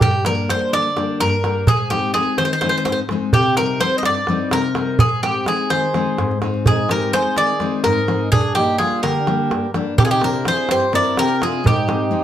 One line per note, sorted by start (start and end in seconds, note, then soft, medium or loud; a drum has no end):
0.01 0.47 G2 medium
0.01 0.24 G4 medium
0.01 darbuka dum medium
0.25 0.49 G3 soft
0.25 0.49 A#3 soft
0.25 0.49 D4 medium
0.25 0.50 A#4 medium
0.25 darbuka tek medium
0.38 darbuka tek soft
0.49 0.88 G3 medium
0.49 0.88 A#3 soft
0.49 0.88 D4 medium
0.49 0.72 C5 medium
0.49 darbuka tek medium
0.61 darbuka tek soft
0.73 1.19 D3 medium
0.73 1.17 D5 loud
0.73 darbuka tek medium
0.96 1.34 G3 medium
0.96 1.34 A#3 medium
0.96 1.35 D4 medium
0.96 darbuka tek medium
1.20 1.66 G2 medium
1.20 1.64 A#4 loud
1.20 darbuka tek medium
1.44 1.63 G3 medium
1.44 1.63 A#3 soft
1.44 1.63 D4 medium
1.44 darbuka tek medium
1.67 2.13 G#2 medium
1.67 1.90 G#4 medium
1.67 darbuka dum medium
1.90 2.13 G#3 medium
1.90 2.13 C4 soft
1.90 2.14 D#4 medium
1.90 2.13 G4 medium
1.90 darbuka tek medium
2.03 darbuka tek soft
2.14 2.52 G#3 medium
2.14 2.52 C4 soft
2.14 2.53 D#4 medium
2.14 2.36 G#4 medium
2.14 darbuka tek medium
2.26 darbuka tek soft
2.38 2.84 D#3 medium
2.38 2.44 C5 medium
2.38 darbuka tek medium
2.45 2.52 C5 medium
2.53 2.60 C5 medium
2.61 3.00 G#3 medium
2.61 3.01 C4 medium
2.61 3.01 D#4 medium
2.61 2.68 C5 medium
2.61 darbuka tek medium
2.69 2.76 C5 medium
2.78 2.84 C5 medium
2.85 3.33 G#2 medium
2.85 2.91 C5 medium
2.85 darbuka tek medium
2.92 2.99 C5 medium
3.09 3.29 G#3 medium
3.09 3.30 C4 soft
3.09 3.30 D#4 medium
3.09 darbuka tek medium
3.33 3.80 C3 medium
3.33 3.56 G4 medium
3.33 darbuka dum medium
3.57 3.79 G3 medium
3.57 3.79 C4 soft
3.57 3.80 D#4 medium
3.57 3.79 A#4 loud
3.57 darbuka tek medium
3.69 darbuka tek soft
3.80 4.18 G3 medium
3.80 4.18 C4 soft
3.80 4.19 D#4 medium
3.80 3.96 C5 loud
3.80 darbuka tek medium
3.92 darbuka tek soft
3.98 4.05 D#5 medium
4.03 4.51 G2 medium
4.03 4.49 D5 loud
4.03 darbuka tek medium
4.27 4.66 G3 medium
4.27 4.67 C4 medium
4.27 4.67 D#4 medium
4.27 darbuka tek medium
4.51 4.98 C3 medium
4.51 5.01 A#4 medium
4.51 darbuka tek medium
4.75 4.95 G3 medium
4.75 4.95 C4 medium
4.75 4.95 D#4 soft
4.75 darbuka tek medium
4.99 5.45 G#2 medium
4.99 5.23 G#4 medium
4.99 darbuka dum loud
5.11 darbuka tek soft
5.23 5.45 G#3 medium
5.23 5.46 C4 soft
5.23 5.46 D#4 medium
5.23 5.45 G4 medium
5.23 darbuka tek medium
5.46 5.85 G#3 soft
5.46 5.85 C4 soft
5.46 5.85 D#4 medium
5.46 5.69 G#4 medium
5.46 darbuka tek medium
5.70 6.16 D#3 medium
5.70 6.38 G#4 medium
5.70 6.38 C5 medium
5.70 darbuka tek medium
5.94 6.32 G#3 medium
5.94 6.33 C4 medium
5.94 6.33 D#4 medium
5.94 darbuka tek medium
6.06 darbuka tek soft
6.18 6.64 G#2 medium
6.18 darbuka tek medium
6.31 darbuka tek soft
6.42 6.80 G#3 medium
6.42 6.80 C4 soft
6.42 6.81 D#4 soft
6.42 darbuka tek medium
6.54 darbuka tek soft
6.66 7.12 G#2 medium
6.66 6.89 D#4 medium
6.66 6.89 G#4 medium
6.66 darbuka dum medium
6.88 7.12 G#3 soft
6.88 7.13 C4 soft
6.88 7.13 D#4 medium
6.88 7.12 G4 medium
6.88 7.13 A#4 medium
6.88 darbuka tek medium
7.02 darbuka tek soft
7.13 7.51 G#3 medium
7.13 7.52 C4 soft
7.13 7.52 D#4 medium
7.13 7.36 G#4 medium
7.13 7.35 C5 loud
7.13 darbuka tek medium
7.26 darbuka tek soft
7.36 7.83 D#3 medium
7.36 7.82 G#4 medium
7.36 7.82 D5 loud
7.36 darbuka tek medium
7.60 7.98 G#3 medium
7.60 7.99 C4 medium
7.60 7.99 D#4 medium
7.60 darbuka tek medium
7.84 8.31 G#2 medium
7.84 8.30 D#4 medium
7.84 8.31 A#4 medium
7.84 darbuka tek medium
8.08 8.27 G#3 medium
8.08 8.28 C4 soft
8.08 8.28 D#4 medium
8.08 darbuka tek medium
8.32 8.78 G2 medium
8.32 8.54 D4 medium
8.32 8.54 G#4 loud
8.32 darbuka dum medium
8.55 8.78 G3 soft
8.55 8.79 A#3 soft
8.55 8.80 D4 soft
8.55 8.79 D#4 medium
8.55 8.78 G4 medium
8.55 darbuka tek medium
8.67 darbuka tek soft
8.78 9.18 G3 medium
8.78 9.18 A#3 soft
8.78 9.18 D4 medium
8.78 9.02 F4 medium
8.78 9.03 G#4 medium
8.78 darbuka tek medium
8.92 darbuka tek soft
9.03 9.50 D3 medium
9.03 9.71 G4 medium
9.03 9.71 A#4 medium
9.03 darbuka tek medium
9.27 9.65 G3 medium
9.27 9.65 A#3 soft
9.27 9.66 D4 medium
9.27 darbuka tek medium
9.51 9.97 G2 medium
9.51 darbuka tek medium
9.74 9.93 G3 medium
9.74 9.94 A#3 medium
9.74 9.94 D4 medium
9.74 darbuka tek medium
9.98 10.44 C3 medium
9.98 10.04 D4 medium
9.98 10.04 G4 medium
9.98 darbuka dum loud
10.04 10.10 F4 medium
10.04 10.11 G#4 medium
10.11 10.22 D#4 medium
10.11 10.22 G4 medium
10.21 10.45 C4 medium
10.21 10.46 D4 soft
10.21 10.46 E4 medium
10.21 10.45 G4 medium
10.21 10.45 A#4 medium
10.21 darbuka tek medium
10.34 darbuka tek soft
10.45 10.85 C4 medium
10.45 10.85 D4 soft
10.45 10.85 E4 medium
10.45 10.68 G#4 medium
10.45 10.69 C5 loud
10.45 darbuka tek medium
10.57 darbuka tek soft
10.69 11.16 G2 medium
10.69 10.92 G4 medium
10.69 10.95 C5 loud
10.69 darbuka tek medium
10.93 11.32 C4 medium
10.93 11.32 D4 soft
10.93 11.32 E4 medium
10.93 11.16 A#4 medium
10.93 11.17 D5 loud
10.93 darbuka tek medium
11.17 11.64 C3 medium
11.17 11.41 G4 medium
11.17 11.40 A#4 loud
11.17 darbuka tek medium
11.41 11.60 C4 medium
11.41 11.61 D4 soft
11.41 11.61 E4 medium
11.41 11.64 F4 medium
11.41 11.64 G#4 medium
11.41 darbuka tek medium
11.64 12.11 G#2 medium
11.64 12.24 D#4 medium
11.64 12.24 G4 medium
11.64 darbuka dum loud
11.88 12.09 G#3 medium
11.88 12.10 C4 soft
11.88 12.10 D#4 medium
11.88 darbuka tek medium
12.11 12.24 G#3 medium
12.11 12.24 C4 soft
12.11 12.24 D#4 soft